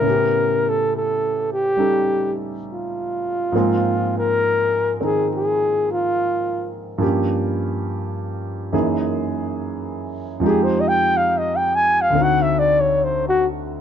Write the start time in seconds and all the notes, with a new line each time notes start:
Already playing: A#4
0.00 A2 C#3 B3
0.06 C#4 G4
0.69 A4
0.97 A4
1.53 G4
1.76 G3 C#4 D#4 A4
2.72 F4
3.52 G#2 F3 A#3 C4
3.57 G#3
4.18 A#4
5.00 D#3 C4 D#4 A#4
5.05 G#4
5.36 G#4
5.91 F4
6.98 G2 F3 A#3 C#4
7.02 G4
8.72 F#2 E3 A#3 D#4 G#4
10.40 F2 F3 G#3
10.44 D#4 G4 G#4
10.64 C5
10.81 D#5
10.88 G5
11.17 F5
11.38 D#5
11.56 G5
11.75 G#5
12.01 F5
12.10 D2 D3
12.15 C4 D#4
12.20 F#4 F#5
12.42 E5
12.59 D5
12.80 C#5
13.04 C5
13.29 F#4